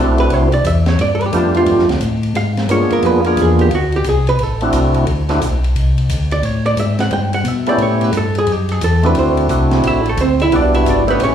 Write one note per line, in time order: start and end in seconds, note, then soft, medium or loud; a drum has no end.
0.00 0.29 B1 medium
0.00 0.48 A3 medium
0.00 0.48 C4 medium
0.00 0.49 D4 medium
0.00 0.49 E4 medium
0.00 0.49 F#4 medium
0.00 0.19 A4 medium
0.18 0.33 B4 medium
0.18 ride medium
0.29 0.63 C2 medium
0.29 ride medium
0.34 0.53 C5 medium
0.52 0.65 D5 loud
0.52 ride medium
0.64 0.97 E2 medium
0.64 0.88 E5 loud
0.64 hi-hat pedal medium
0.64 ride medium
0.86 0.99 C#5 medium
0.86 snare medium
0.86 ride soft
0.98 1.31 G2 medium
0.98 1.11 D5 medium
0.98 ride medium
1.15 1.23 B4 medium
1.21 ride medium
1.26 1.35 G4 medium
1.32 1.66 F2 medium
1.32 1.84 A3 medium
1.32 1.85 B3 medium
1.32 1.85 D4 medium
1.32 1.85 F4 medium
1.32 1.85 G4 medium
1.32 hi-hat pedal medium
1.32 ride medium
1.37 1.56 D4 medium
1.54 1.88 F4 medium
1.54 ride soft
1.66 1.77 G2 medium
1.66 ride medium
1.78 1.90 F2 medium
1.78 snare soft
1.89 2.00 D2 medium
1.89 snare soft
1.89 ride medium
2.00 2.34 A2 medium
2.00 hi-hat pedal medium
2.00 ride medium
2.23 ride medium
2.34 2.68 G#2 medium
2.34 2.67 F5 medium
2.34 ride medium
2.57 snare soft
2.57 ride medium
2.68 2.89 G2 loud
2.68 3.21 A#3 medium
2.68 3.21 B3 medium
2.68 3.21 D4 medium
2.68 3.21 F4 medium
2.68 3.22 G#4 medium
2.68 2.92 C#5 medium
2.68 hi-hat pedal medium
2.68 ride medium
2.90 2.98 G2 soft
2.90 3.03 A#4 loud
2.90 ride soft
3.02 3.36 F2 medium
3.02 3.26 B4 loud
3.02 ride medium
3.24 3.69 A#3 medium
3.24 3.69 B3 medium
3.24 3.69 D4 medium
3.24 3.69 F4 medium
3.24 3.70 G#4 medium
3.24 3.38 A#4 medium
3.24 ride medium
3.35 3.69 E2 medium
3.35 hi-hat pedal medium
3.35 ride medium
3.42 3.61 G#4 medium
3.59 3.72 G4 medium
3.59 ride soft
3.69 4.03 D2 medium
3.69 ride medium
3.75 3.94 F#4 medium
3.92 ride soft
3.96 4.06 G4 medium
4.04 4.38 C2 medium
4.04 hi-hat pedal medium
4.04 ride medium
4.09 4.28 G#4 medium
4.27 4.43 B4 loud
4.27 ride medium
4.38 4.72 A1 medium
4.38 ride medium
4.43 5.43 A4 medium
4.61 5.05 A3 medium
4.61 5.05 C4 medium
4.61 5.05 D4 medium
4.61 5.06 E4 medium
4.61 5.06 F#4 medium
4.61 ride medium
4.72 5.06 C2 medium
4.72 hi-hat pedal medium
4.72 ride medium
4.94 ride medium
5.07 5.40 D2 medium
5.07 ride medium
5.29 5.40 A3 medium
5.29 5.40 C4 medium
5.29 5.40 D4 medium
5.29 5.41 E4 medium
5.29 5.41 F#4 medium
5.29 snare soft
5.29 ride soft
5.41 5.75 B1 medium
5.41 hi-hat pedal medium
5.41 ride medium
5.64 ride medium
5.76 6.09 C2 medium
5.76 ride medium
5.98 ride medium
6.09 6.42 D2 medium
6.09 hi-hat pedal medium
6.09 ride medium
6.31 6.45 D5 loud
6.31 ride medium
6.42 6.76 A2 medium
6.42 6.66 C#5 medium
6.42 ride medium
6.66 6.77 D5 medium
6.66 ride medium
6.77 7.10 G#2 medium
6.77 7.00 E5 medium
6.77 hi-hat pedal medium
6.77 ride medium
6.99 7.12 F#5 loud
6.99 snare soft
6.99 ride medium
7.11 7.44 G2 medium
7.11 7.33 G5 loud
7.11 ride medium
7.33 7.48 F#5 medium
7.33 ride medium
7.44 7.78 B2 loud
7.44 7.68 E5 medium
7.44 hi-hat pedal medium
7.44 ride medium
7.66 8.11 A3 medium
7.66 8.11 B3 medium
7.66 8.11 C#4 medium
7.66 8.11 E4 medium
7.66 8.12 G4 medium
7.66 7.80 D5 loud
7.66 ride medium
7.78 8.12 A2 medium
7.78 ride medium
7.82 8.04 C#5 medium
8.01 8.14 B4 medium
8.01 ride medium
8.13 8.46 G2 medium
8.13 hi-hat pedal medium
8.13 ride medium
8.17 8.37 A4 medium
8.35 8.52 G#4 medium
8.35 ride medium
8.47 8.80 F#2 medium
8.47 ride medium
8.52 8.72 G4 medium
8.69 8.82 G#4 loud
8.69 ride medium
8.81 9.15 E2 loud
8.81 9.04 A4 medium
8.81 hi-hat pedal medium
8.81 ride medium
9.03 9.47 A3 medium
9.03 9.47 C4 medium
9.03 9.48 D4 medium
9.03 9.48 E4 medium
9.03 9.48 F#4 medium
9.03 9.17 B4 loud
9.03 ride medium
9.15 9.49 D2 medium
9.15 9.31 C5 medium
9.15 ride medium
9.37 ride medium
9.49 9.82 C2 loud
9.49 10.01 A3 medium
9.49 10.01 C4 medium
9.49 10.02 D4 medium
9.49 10.02 E4 medium
9.49 10.02 F#4 medium
9.49 hi-hat pedal medium
9.49 ride medium
9.71 snare medium
9.71 ride medium
9.82 10.16 A1 medium
9.82 ride medium
9.87 10.07 E4 medium
9.87 10.07 E5 medium
10.05 10.19 A3 medium
10.05 10.19 A4 medium
10.05 ride medium
10.17 10.51 D2 loud
10.17 10.41 C5 medium
10.17 hi-hat pedal medium
10.17 ride medium
10.22 10.41 C4 medium
10.40 10.53 E4 medium
10.40 10.53 E5 loud
10.40 ride medium
10.51 10.85 B1 medium
10.51 11.04 G3 medium
10.51 11.04 B3 medium
10.51 11.04 D4 medium
10.51 11.04 E4 medium
10.51 11.04 F#4 medium
10.51 ride medium
10.56 10.76 D4 medium
10.56 10.74 D5 medium
10.74 10.87 E4 medium
10.74 10.86 E5 loud
10.74 ride medium
10.86 11.19 G1 loud
10.86 11.09 D4 medium
10.86 11.09 D5 medium
10.86 hi-hat pedal medium
10.86 ride medium
11.07 11.35 A3 medium
11.07 11.35 B3 medium
11.07 11.35 C#4 medium
11.07 11.35 E4 medium
11.07 11.35 G4 loud
11.07 11.21 B4 loud
11.07 ride medium
11.11 11.21 B3 medium
11.20 11.35 A1 medium
11.20 11.35 C#5 loud
11.20 ride medium
11.24 11.35 C#4 medium